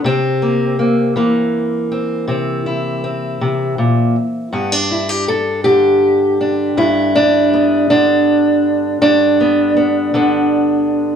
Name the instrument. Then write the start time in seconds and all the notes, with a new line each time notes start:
steel-string acoustic guitar
0.04 C3 C4
0.42 A#3
0.79 A#3
1.16 E3 A#3
1.92 C4
2.28 C3 C4
2.66 E4
3.04 C4
3.41 C3
3.78 A#2
4.52 G2 B3
4.72 D4
4.91 E4
5.09 G4
5.28 A4
5.64 D3 G4
6.41 D4
6.77 G2 E4
7.16 D4
7.53 B3
7.90 D3 D4
9.02 G2 D4
9.40 B3
9.77 B3
10.14 D3 B3